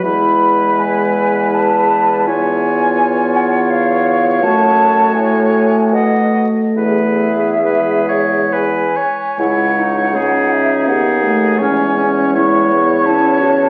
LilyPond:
<<
  \new Staff \with { instrumentName = "Flute" } { \time 3/4 \key e \major \tempo 4 = 81 b''4 gis''4 a''4 | gis''4. fis''8 eis''4 | a''4 gis''4 fis''8 r8 | e''2 gis''4 |
\key cis \minor fis''4. e''8 fis''4 | gis''4 cis'''4 a''4 | }
  \new Staff \with { instrumentName = "Oboe" } { \time 3/4 \key e \major b'2. | cis''2.~ | cis''2 dis''8 r8 | b'4 b'8 cis''8 b'8 cis''8 |
\key cis \minor cis''4 gis'4 gis'4 | cis''4 cis''2 | }
  \new Staff \with { instrumentName = "Clarinet" } { \time 3/4 \key e \major e'2. | eis'2. | fis'2~ fis'8 r8 | gis'2~ gis'8 r8 |
\key cis \minor e'8 dis'2~ dis'8 | cis'8 cis'8 e'4 e'8 fis'8 | }
  \new Staff \with { instrumentName = "French horn" } { \time 3/4 \key e \major gis2. | b2. | a2.~ | a8 r8 gis4. r8 |
\key cis \minor gis4 cis'4 b8 a8 | gis4 gis8 b8 cis'4 | }
  \new Staff \with { instrumentName = "Bassoon" } { \clef bass \time 3/4 \key e \major e,2.~ | e,2. | fis,4 a,4 b,8 r8 | e,2~ e,8 r8 |
\key cis \minor cis,2 dis,4 | e,2. | }
>>